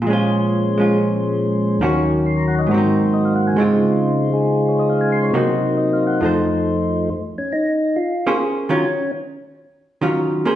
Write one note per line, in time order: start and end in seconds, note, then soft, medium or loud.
0.00 1.79 A#2 soft
0.00 1.80 A#2 soft
0.00 1.80 F3 soft
0.05 1.81 G#3 soft
0.05 0.77 G#3 soft
0.05 1.83 C#4 soft
0.10 0.78 C#4 soft
0.10 0.80 F4 soft
0.10 1.84 C5 soft
0.78 1.81 G#3 soft
0.78 1.81 C#4 soft
0.78 1.82 F4 soft
1.79 2.68 D#2 soft
1.79 2.67 D#3 soft
1.79 2.69 D#3 soft
1.79 2.69 F#3 soft
1.79 2.70 A#3 soft
1.79 2.70 C#4 soft
1.79 2.70 F#4 soft
1.84 2.71 C#5 medium
2.26 2.46 C6 soft
2.37 2.55 A#5 soft
2.48 2.61 F#5 soft
2.59 2.74 D#5 soft
2.67 3.56 G#2 soft
2.67 3.57 G#2 soft
2.67 3.57 D#3 soft
2.67 3.57 A#3 soft
2.67 3.57 F#4 soft
2.67 3.58 C5 soft
2.71 3.58 F#3 soft
2.71 3.59 C4 soft
2.77 3.61 D#4 soft
3.14 3.34 D#5 soft
3.25 3.43 F5 soft
3.36 3.49 F#5 soft
3.47 3.62 G#5 soft
3.52 5.31 C#3 soft
3.52 4.29 G#3 soft
3.56 5.33 C#3 soft
3.56 5.34 G#3 soft
3.56 5.35 C4 soft
3.56 4.31 D#4 soft
3.56 5.35 F4 soft
3.61 5.34 F4 soft
3.61 5.34 C5 medium
4.30 5.33 G#3 soft
4.30 5.33 D#4 soft
4.30 5.35 G#4 soft
4.69 4.82 C#5 soft
4.79 4.94 D#5 soft
4.90 5.10 F5 soft
5.01 5.19 G#5 soft
5.12 5.26 C6 soft
5.23 5.38 C#5 soft
5.31 6.20 C3 soft
5.31 6.22 C3 soft
5.31 6.21 F#3 soft
5.31 6.21 A#3 soft
5.31 6.22 A#3 soft
5.31 6.21 D#4 soft
5.35 6.22 D#4 soft
5.35 6.22 F#4 soft
5.35 6.21 C5 medium
5.77 6.04 D#5 soft
5.93 6.15 F5 soft
6.07 6.29 F#5 soft
6.21 7.09 F2 soft
6.21 7.09 F3 soft
6.21 7.10 A3 soft
6.21 7.10 D#4 soft
6.21 7.11 A4 soft
6.21 7.10 C5 soft
6.25 7.12 C5 soft
7.38 7.54 C#4 medium
7.53 7.98 D#4 medium
7.96 8.38 F4 medium
8.27 8.68 A#3 soft
8.27 8.68 C#4 medium
8.27 8.68 G#4 medium
8.27 8.68 C5 medium
8.69 8.83 D#3 medium
8.69 8.84 F#3 medium
8.69 8.84 C#4 medium
8.69 9.11 C#4 medium
8.69 8.84 F4 medium
10.01 10.43 D#3 medium
10.01 10.44 F#3 medium
10.01 10.44 C#4 medium
10.01 10.44 F4 medium
10.45 10.55 A#3 medium
10.45 10.55 C#4 medium
10.45 10.55 G#4 medium
10.45 10.55 C5 medium